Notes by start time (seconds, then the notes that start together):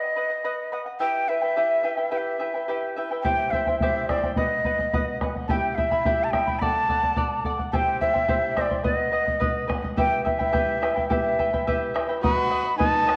Already playing: B4 D#5 F#5
0.16 B4 D#5 F#5
0.30 D#5 F#5
0.45 B4 D#5 F#5
0.72 B4 D#5 F#5
0.86 D#5 F#5
1.00 E4 G4 B4 E5 G5
1.28 E4 B4 E5 G5
1.41 E4 B4 G5
1.56 E4 G4 B4 E5 G5
1.83 E4 B4 E5 G5
1.97 E4 B4 G5
2.11 E4 G4 B4 E5 G5
2.18 E5
2.39 E4 B4 E5 G5
2.54 E4 B4 G5
2.68 E4 G4 B4 E5 G5
2.96 E4 B4 E5 G5
3.11 E4 B4 G5
3.23 E4 G4 C5 E5 G5, bombo low
3.51 E4 C5 E5 G5, bombo low
3.66 E4 C5 G5, bombo low
3.80 E4 G4 C5 E5 G5, bombo low
4.08 E4 C5 D5 E5 G5, bombo rim, bombo low
4.23 E4 C5 G5, bombo low
4.36 B4 D#5 F#5, bombo low
4.64 B4 D#5 F#5, bombo low
4.79 D#5 F#5, bombo low
4.94 B4 D#5 F#5, bombo low
5.21 B4 D#5 F#5, bombo rim, bombo low
5.35 D#5 F#5, bombo low
5.48 E4 G4 E5 G5 A5 B5, bombo low
5.75 E4 E5 G5 B5, bombo low
5.91 E4 E5 B5, bombo low
6.05 E4 G4 E5 G5 B5, bombo low
6.24 A5
6.31 E4 E5 G5 B5, bombo rim, bombo low
6.47 E4 E5 B5, bombo low
6.59 A4 D5 F#5 A5 B5, bombo low
6.89 A4 D5 F#5, bombo low
7.03 D5 F#5, bombo low
7.16 A4 D5 F#5, bombo low
7.44 A4 D5 F#5, bombo low
7.59 D5 F#5, bombo low
7.72 E4 G4 C5 E5 G5 A5, bombo low
8.01 E4 C5 E5 G5, bombo low
8.14 E4 C5 G5, bombo low
8.28 E4 G4 C5 E5 G5, bombo low
8.56 E4 C5 D#5 E5 G5, bombo rim, bombo low
8.61 D5
8.70 E4 C5 G5, bombo low
8.84 B4 D#5 F#5, bombo low
9.12 B4 D#5 F#5
9.26 D#5 F#5, bombo low
9.40 B4 D#5 F#5, bombo low
9.68 B4 D#5 F#5, bombo rim, bombo low
9.82 D#5 F#5, bombo low
9.97 E4 G4 B4 E5 G5, bombo low
10.24 E4 B4 E5 G5, bombo low
10.39 E4 B4 G5, bombo low
10.52 E4 G4 B4 E5 G5, bombo low
10.81 E4 B4 E5 G5, bombo rim
10.96 E4 B4 G5, bombo low
11.09 E4 G4 B4 E5 G5, bombo low
11.39 E4 B4 E5 G5, bombo low
11.53 E4 B4 G5, bombo low
11.67 E4 G4 B4 E5 G5, bombo low
11.94 E4 B4 E5 G5, bombo rim
12.09 E4 B4 G5
12.23 F#4 B4 D#5 F#5 B5, bombo low
12.50 B4 D#5 F#5
12.64 D#5 F#5
12.78 D#4 B4 D#5 F#5 A5, bombo low
13.06 B4 D#5 F#5, bombo rim